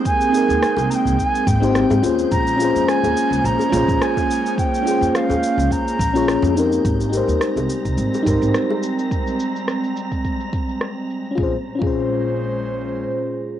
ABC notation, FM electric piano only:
X:1
M:4/4
L:1/16
Q:"Swing 16ths" 1/4=106
K:Ab
V:1 name="FM electric piano"
[CEGB]2 [CEAB]8 z [CEGc]3 [DFAc]2- | [DFAc]2 [DFAc]8 [DFAc]6- | [DFAc]2 [DFAc]8 z [DFAd]3 [CEGB]2- | [CEGB]2 [EGBc]8 [EGBc]6- |
[EGBc]2 z12 z2 | [DFAc] z2 [DFAc]12- [DFAc] |]